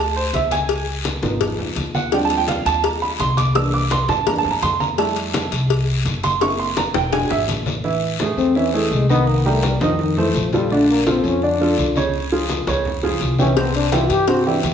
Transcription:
Already playing: D2
0.00 A5
0.16 C5, high conga
0.33 C#2 E5, cowbell, high conga, short guiro
0.51 G#5, cowbell, high conga, short guiro
0.69 cowbell, high conga, long guiro
0.87 high conga
1.05 cowbell, high conga, short guiro
1.22 G#1 F3 B3 D#4, high conga, short guiro
1.41 cowbell, high conga, low conga, long guiro
1.58 C#2, high conga, low conga
1.76 D#2, cowbell, high conga, short guiro
1.94 F#5, high conga, short guiro
2.12 F3 G3 C4 D4 G5, cowbell, high conga, long guiro
2.25 A5
2.30 cowbell, high conga
2.37 G5
2.48 F5, cowbell, high conga, short guiro
2.65 D#2 A5, cowbell, high conga, short guiro
2.84 A#5, cowbell, high conga, long guiro
3.02 B5, high conga
3.19 C2 C6, cowbell, high conga, short guiro
3.37 D6, cowbell, high conga, short guiro
3.55 E3 A#3 D4 E6, cowbell, long guiro
3.74 D6
3.91 C6, cowbell, high conga, short guiro
4.08 G2 A5, high conga, short guiro
4.26 E3 A#3 D4 A#5, cowbell, high conga, low conga, long guiro
4.39 A5
4.44 G2, high conga, low conga
4.51 A#5
4.62 F2 C6, cowbell, high conga, short guiro
4.80 A#5, high conga, short guiro
4.98 G3 A3 E4 A5, cowbell, high conga, long guiro
5.16 cowbell, high conga
5.34 cowbell, high conga, short guiro
5.51 C2, cowbell, high conga, short guiro
5.70 cowbell, long guiro
5.88 high conga
6.05 F#1, cowbell, high conga, short guiro
6.23 C6, cowbell, high conga, short guiro
6.41 A#3 C4 E4 C#6, cowbell, high conga, long guiro
6.59 C6, high conga
6.77 A#5, cowbell, high conga, short guiro
6.94 E1 G5, high bongo, high conga, short guiro
7.12 G#3 D4 F#4 G#5, cowbell, high bongo, high conga, low conga, long guiro
7.30 G#1 E5, low bongo, high conga, low conga
7.47 A1, cowbell, high conga, short guiro
7.66 low bongo, high conga, short guiro
7.84 E3 E4 E5, high conga, long guiro
8.02 high conga
8.20 A3 G#4 A4, high conga, short guiro
8.36 E2 C4, high conga, short guiro
8.55 E3 C#4 E4 E5, high conga, long guiro
8.74 E3 A3 G#4 A4, high conga
8.91 C2 G#3, high conga, short guiro
9.09 D#3 B3 D#4 D#5, high conga, short guiro
9.27 A#3, high conga, long guiro
9.46 G3 A3 G4 A#4
9.63 G3, high conga, short guiro
9.80 F2 D#3 F3 D#4 D#5, high conga, short guiro
9.99 D#3, high conga, low conga, long guiro
10.17 E3 A3 A4 C5, high conga, low conga
10.34 A#1 F3, high conga, short guiro
10.53 F3 G3 F4 A4, high conga, short guiro
10.70 D3 A3 D4 D5, high conga, long guiro
10.89 A#3, high conga
11.06 F3 C4 F4 A4, high conga, short guiro
11.24 F2 C#4, high conga, short guiro
11.42 D3 D4 D5, high conga, long guiro
11.60 F3 F4 A4, high conga
11.77 C#2, high conga, short guiro
11.96 C#3 C#4 C#5, high conga, short guiro
12.14 high conga, long guiro
12.32 F3 F4 G#4, high conga
12.49 high conga, short guiro
12.67 C#2 C#3 C#4 C#5, high conga, short guiro
12.85 high conga, low conga, long guiro
13.03 F3 F4 G#4, high conga, low conga
13.21 C2, high conga, short guiro
13.39 E3 C#4 E4 G4, high conga, short guiro
13.56 C3 B3 C4 C5, cowbell, long guiro
13.74 D4, cowbell, high conga
13.92 E3 E4 F4 G4, cowbell, high conga, short guiro
14.10 G2 G4, cowbell, high conga, short guiro
14.27 C3 C4 F#4 C5, cowbell, high conga, long guiro
14.46 E3 D4 E4 G4, high conga
14.63 E2 B3, cowbell, high conga, short guiro

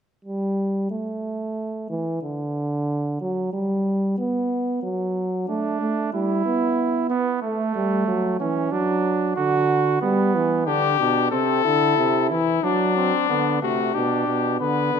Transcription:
0.25 G3
0.91 A3
1.90 E3
2.22 D3
3.21 F#3
3.53 G3
4.18 B3
4.83 F#3
5.47 A3 D4
5.81 A3
6.13 G3 E4
6.46 B3
7.10 B3
7.42 A3
7.75 G3
8.08 F#3
8.40 E3 C#4
8.72 F#3 D4
9.36 D3 F#4
10.01 G3 B3
10.35 E3
10.67 D3 D4 G4
10.99 B2 D4
11.31 C3 C4 A4
11.64 D3 E4
11.98 C3
12.30 E3 E4
12.63 F#3 D4
12.96 C4
13.29 D3 B3
13.62 C3 A3 F#4
13.94 B2 D4 G4
14.27 B2
14.60 D3 B3 B4
14.93 D3

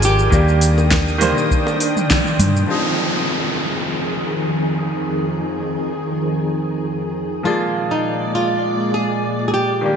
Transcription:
Already playing: G#1 F3 G#3 A#3 D4 A#4 C5 G#5 D6
0.02 G4, open hi-hat, shaker
0.19 shaker
0.30 D#2 D#3 G3 A#3 D4 G5 D#6, kick, shaker
0.34 G4
0.48 shaker
0.61 open hi-hat, shaker
0.78 high bongo, shaker
0.91 kick, snare, shaker
1.08 shaker
1.18 D#3 G3 A#3 D4, mid tom, open hi-hat, shaker
1.23 C5
1.37 high bongo, shaker
1.51 kick, shaker
1.67 high bongo, shaker
1.80 open hi-hat, shaker
1.97 mid tom, shaker
2.10 kick, snare, shaker
2.27 shaker
2.39 G2, mid tom, open hi-hat, shaker
2.56 shaker
2.67 F2 D#3 F3 G#3 C4 D#4 G#4, downlifter
2.71 G#4
7.43 A#2 F3 G#3 A#3 F4 D5
7.48 G#4
7.91 D#4
8.35 F4
8.94 G#4
9.48 G#4
9.54 G4
9.81 D#2 D#3 G3 A#3 D4 G4
9.86 G4

